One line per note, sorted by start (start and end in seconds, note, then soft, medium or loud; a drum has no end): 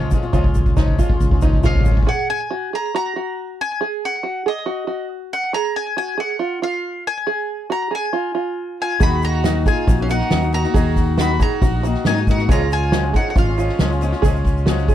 0.00 0.12 C#2 medium
0.00 0.12 C#3 medium
0.00 0.10 F3 medium
0.00 0.11 G#3 medium
0.00 0.12 C#4 medium
0.00 0.13 F4 loud
0.00 0.32 F4 medium
0.00 floor tom medium
0.11 0.23 F3 medium
0.11 0.23 G#3 medium
0.11 0.23 C#4 medium
0.11 0.21 F4 medium
0.11 kick medium
0.11 mid tom medium
0.11 shaker medium
0.22 0.33 G#3 soft
0.22 0.34 C#4 medium
0.22 0.34 F4 medium
0.22 shaker soft
0.33 0.99 C#2 loud
0.33 0.45 C#3 medium
0.33 0.45 F3 medium
0.33 0.45 G#3 medium
0.33 0.45 C#4 medium
0.33 0.76 F4 medium
0.33 0.43 F4 loud
0.33 kick medium
0.33 floor tom medium
0.33 shaker medium
0.44 0.76 G#3 medium
0.44 0.77 C#4 medium
0.44 0.77 F4 medium
0.44 kick loud
0.54 kick medium
0.54 mid tom medium
0.54 shaker medium
0.66 kick medium
0.66 shaker soft
0.77 0.99 C#3 medium
0.77 0.97 F3 medium
0.77 0.99 G#3 medium
0.77 1.00 C#4 medium
0.77 0.98 D#4 medium
0.77 1.00 F4 medium
0.77 kick loud
0.77 snare medium
0.77 floor tom medium
0.77 shaker medium
0.88 kick loud
0.98 1.10 F3 medium
0.98 1.10 G#3 medium
0.98 1.10 C#4 medium
0.98 1.41 F4 medium
0.98 1.08 F4 medium
0.98 kick loud
0.98 shaker medium
1.09 1.32 G#3 soft
1.09 1.31 C#4 medium
1.09 1.30 F4 medium
1.09 kick loud
1.09 floor tom medium
1.20 1.86 C#2 loud
1.20 kick loud
1.20 shaker medium
1.31 1.42 G#3 medium
1.31 1.43 C#4 medium
1.31 1.42 F4 medium
1.31 kick loud
1.31 floor tom medium
1.41 1.63 F3 medium
1.41 1.64 G#3 medium
1.41 1.64 C#4 medium
1.41 1.63 D#4 medium
1.41 1.65 F4 medium
1.41 kick loud
1.41 shaker loud
1.53 kick loud
1.63 1.86 C#3 medium
1.63 1.84 F3 medium
1.63 1.85 G#3 medium
1.63 1.86 C#4 medium
1.63 2.06 F4 medium
1.63 1.87 F4 loud
1.63 2.08 F5 medium
1.63 kick loud
1.63 snare medium
1.63 mid tom medium
1.63 shaker medium
1.75 kick loud
1.75 floor tom medium
1.81 kick loud
1.85 1.96 F3 medium
1.85 1.97 G#3 medium
1.85 1.97 C#4 medium
1.85 1.96 F4 medium
1.85 kick loud
1.85 mid tom medium
1.85 shaker loud
1.92 kick loud
1.97 2.09 G#3 medium
1.97 2.08 C#4 medium
1.97 2.08 F4 medium
1.97 kick loud
2.03 kick loud
2.07 2.50 G#4 medium
2.07 2.30 F#5 loud
2.30 2.74 G#5 loud
2.51 2.72 F#4 medium
2.73 2.94 G#4 medium
2.73 2.95 A#5 loud
2.95 3.15 F#4 medium
2.95 3.61 A#5 loud
3.16 3.58 F#4 medium
3.61 4.05 G#5 loud
3.81 4.23 G#4 loud
4.05 4.48 F#5 loud
4.23 4.45 F#4 medium
4.46 4.65 G#4 medium
4.46 5.08 D#5 medium
4.66 4.86 F#4 loud
4.87 5.30 F#4 medium
5.33 5.54 F#5 loud
5.53 5.96 G#4 loud
5.53 5.76 A#5 loud
5.76 5.97 G#5 loud
5.97 6.17 F#4 medium
5.97 6.20 G#5 loud
6.17 6.39 G#4 medium
6.17 6.60 F#5 loud
6.39 6.61 F4 loud
6.62 7.05 F4 medium
6.62 7.03 F5 loud
7.07 7.72 G#5 loud
7.27 7.69 G#4 loud
7.70 7.90 F#4 medium
7.70 7.94 A#5 loud
7.91 8.13 G#4 medium
7.95 8.77 G#5 loud
8.13 8.33 F4 medium
8.35 8.78 F4 medium
8.81 9.00 F4 medium
8.81 9.02 G#5 loud
9.00 9.66 D#2 medium
9.00 9.42 D#3 medium
9.00 9.44 A#3 medium
9.00 9.44 D#4 medium
9.00 9.22 F#4 loud
9.00 9.44 F#4 medium
9.00 9.43 G#4 medium
9.00 9.22 B5 loud
9.00 kick loud
9.00 open hi-hat medium
9.00 shaker loud
9.22 9.64 F#4 loud
9.22 9.64 A#5 loud
9.22 open hi-hat soft
9.22 shaker medium
9.44 9.64 D#3 medium
9.44 9.65 A#3 medium
9.44 9.66 D#4 medium
9.44 9.66 F#4 medium
9.44 9.67 F#4 medium
9.44 snare loud
9.44 open hi-hat medium
9.44 shaker loud
9.66 9.99 D#3 medium
9.66 9.99 A#3 medium
9.66 9.99 D#4 medium
9.66 10.01 F4 loud
9.66 9.87 G#4 medium
9.66 10.02 G#5 loud
9.66 kick medium
9.66 open hi-hat medium
9.66 shaker medium
9.87 10.21 A#1 loud
9.87 10.08 F#4 medium
9.87 kick loud
9.87 open hi-hat medium
9.87 shaker loud
9.98 10.09 A#3 medium
9.98 10.10 D#4 medium
9.98 10.09 F#4 medium
10.02 10.09 C#4 medium
10.02 10.10 F5 medium
10.09 10.29 D#3 medium
10.09 10.30 A#3 medium
10.09 10.31 D#4 medium
10.09 10.51 D#4 medium
10.09 10.52 F#4 medium
10.09 10.31 F#4 medium
10.09 10.54 F#5 loud
10.09 open hi-hat medium
10.09 shaker medium
10.20 snare soft
10.30 10.65 D#2 medium
10.30 10.42 D#3 medium
10.30 10.42 A#3 medium
10.30 10.42 D#4 medium
10.30 10.41 F#4 medium
10.30 snare loud
10.30 open hi-hat medium
10.30 shaker medium
10.42 10.53 A#3 soft
10.42 10.54 D#4 medium
10.42 10.53 F#4 medium
10.42 shaker soft
10.52 10.64 D#3 medium
10.52 10.65 A#3 medium
10.52 10.64 D#4 medium
10.52 11.15 F#4 loud
10.52 10.62 F#4 medium
10.52 11.15 A#5 loud
10.52 open hi-hat medium
10.52 shaker medium
10.63 10.74 A#3 soft
10.63 10.74 D#4 medium
10.63 10.75 F#4 medium
10.63 snare soft
10.63 shaker soft
10.74 11.40 D#2 loud
10.74 11.18 D#3 medium
10.74 11.18 A#3 medium
10.74 11.19 D#4 loud
10.74 11.19 F#4 medium
10.74 11.17 G#4 loud
10.74 kick loud
10.74 open hi-hat medium
10.74 shaker loud
10.96 kick medium
10.96 open hi-hat medium
10.96 shaker medium
11.17 11.30 D#3 medium
11.17 11.30 A#3 medium
11.17 11.30 D#4 medium
11.17 11.39 F#4 medium
11.17 11.29 F#4 loud
11.17 11.40 B5 loud
11.17 snare loud
11.17 open hi-hat medium
11.17 shaker loud
11.30 11.40 A#3 soft
11.30 11.41 D#4 soft
11.30 11.41 F#4 medium
11.39 11.73 D#3 medium
11.39 11.73 A#3 medium
11.39 11.74 D#4 medium
11.39 12.03 F#4 loud
11.39 11.72 F#4 medium
11.39 11.61 G#4 medium
11.39 12.07 A#5 loud
11.39 kick medium
11.39 open hi-hat medium
11.39 shaker medium
11.62 11.95 A#1 loud
11.62 11.82 F#4 medium
11.62 kick loud
11.62 open hi-hat medium
11.62 shaker medium
11.73 11.84 A#3 soft
11.73 11.85 D#4 medium
11.73 11.84 F#4 medium
11.83 12.05 D#3 medium
11.83 12.06 A#3 medium
11.83 12.07 D#4 medium
11.83 12.26 F#4 medium
11.83 open hi-hat medium
11.83 shaker medium
11.87 12.07 F#4 medium
11.94 snare soft
12.05 12.51 G#2 loud
12.05 12.17 D#3 loud
12.05 12.17 A#3 loud
12.05 12.27 D#4 medium
12.05 12.18 D#4 loud
12.05 12.16 F#4 loud
12.05 12.27 G#5 loud
12.05 snare loud
12.05 open hi-hat medium
12.05 shaker medium
12.16 12.27 A#3 soft
12.16 12.28 D#4 medium
12.16 12.28 F#4 medium
12.16 snare soft
12.16 shaker soft
12.27 12.38 D#3 medium
12.27 12.39 A#3 medium
12.27 12.49 D#4 medium
12.27 12.39 D#4 medium
12.27 12.37 F#4 medium
12.27 12.51 F#5 loud
12.27 kick medium
12.27 open hi-hat medium
12.27 shaker medium
12.38 12.50 A#3 medium
12.38 12.50 D#4 medium
12.38 12.49 F#4 medium
12.38 snare soft
12.38 shaker soft
12.49 13.15 C#2 loud
12.49 12.60 C#3 medium
12.49 12.60 F3 medium
12.49 12.60 G#3 medium
12.49 12.60 C#4 loud
12.49 12.70 F4 loud
12.49 12.58 F4 medium
12.49 12.92 G#4 loud
12.49 12.73 A#5 loud
12.49 kick loud
12.49 open hi-hat medium
12.49 shaker medium
12.60 12.93 G#3 soft
12.60 12.93 C#4 medium
12.60 12.92 F4 medium
12.70 13.12 F4 medium
12.70 13.16 G#5 loud
12.70 open hi-hat medium
12.70 shaker medium
12.92 13.04 C#3 medium
12.92 13.04 F3 medium
12.92 13.04 G#3 loud
12.92 13.03 C#4 medium
12.92 13.02 F4 medium
12.92 13.13 F#4 medium
12.92 snare loud
12.92 open hi-hat medium
12.92 shaker loud
13.03 13.15 G#3 soft
13.03 13.15 C#4 soft
13.03 13.14 F4 medium
13.13 13.47 F3 medium
13.13 13.48 G#3 medium
13.13 13.47 C#4 medium
13.13 13.27 D#4 medium
13.13 13.35 G#4 medium
13.13 13.29 F#5 medium
13.13 kick medium
13.13 open hi-hat medium
13.13 shaker medium
13.18 13.46 F4 medium
13.28 13.35 D#4 medium
13.28 13.37 F#5 medium
13.35 13.69 G#1 loud
13.35 14.95 C#4 medium
13.35 13.57 F4 loud
13.35 14.95 F5 medium
13.35 kick loud
13.35 open hi-hat medium
13.35 shaker medium
13.47 13.58 G#3 soft
13.47 13.59 C#4 medium
13.47 13.58 F4 medium
13.57 13.79 F3 medium
13.57 13.79 G#3 medium
13.57 13.80 C#4 medium
13.57 14.00 F4 medium
13.57 13.80 F4 medium
13.57 open hi-hat medium
13.57 shaker medium
13.69 snare soft
13.79 14.12 C#2 loud
13.79 13.90 C#3 medium
13.79 13.91 F3 loud
13.79 13.91 G#3 loud
13.79 13.90 C#4 loud
13.79 13.89 F4 loud
13.79 snare loud
13.79 open hi-hat medium
13.79 shaker medium
13.90 14.01 G#3 medium
13.90 14.02 C#4 medium
13.90 14.01 F4 medium
13.90 shaker soft
14.01 14.12 F3 medium
14.01 14.12 G#3 medium
14.01 14.13 C#4 medium
14.01 14.11 F4 medium
14.01 open hi-hat medium
14.01 shaker medium
14.12 14.24 G#3 medium
14.12 14.24 C#4 medium
14.12 14.23 F4 medium
14.12 snare soft
14.12 shaker soft
14.22 14.88 C#2 loud
14.22 14.34 C#3 medium
14.22 14.35 F3 loud
14.22 14.35 G#3 loud
14.22 14.35 C#4 medium
14.22 14.65 G#4 medium
14.22 kick loud
14.22 open hi-hat medium
14.22 shaker loud
14.26 14.33 F4 loud
14.34 14.67 G#3 soft
14.34 14.67 C#4 medium
14.34 14.67 F4 medium
14.34 shaker soft
14.45 kick medium
14.45 open hi-hat medium
14.45 shaker medium
14.57 shaker soft
14.66 14.88 C#3 loud
14.66 14.87 F3 medium
14.66 14.88 G#3 loud
14.66 14.89 C#4 loud
14.66 14.89 F4 loud
14.66 14.87 F#4 medium
14.66 snare loud
14.66 open hi-hat medium
14.66 shaker loud
14.79 shaker soft
14.88 14.95 F3 medium
14.88 14.95 G#3 medium
14.88 14.95 C#4 medium
14.88 14.95 F4 medium
14.88 14.95 G#4 medium
14.88 kick medium
14.88 open hi-hat medium
14.88 shaker medium